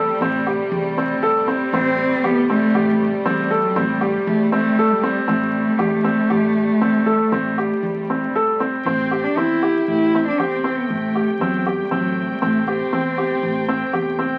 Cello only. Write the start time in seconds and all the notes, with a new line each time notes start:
1.74 C4
2.25 B3
2.50 A3
3.26 G3
3.65 F#3
3.91 G3
4.28 A3
4.54 A3
4.92 G3
5.30 A3
8.86 C4
9.24 D4
9.37 E4
9.89 E4
10.27 D4
10.40 C4
10.77 B3
10.91 A3
11.41 F#3
11.81 G3
11.94 F#3
12.32 G3
12.45 A3
12.69 C4